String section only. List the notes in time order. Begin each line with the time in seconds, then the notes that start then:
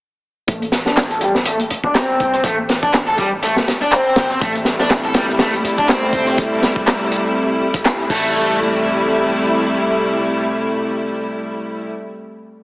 4.41 C3 G3 A3 E4
8.10 C3 G3 A3 E4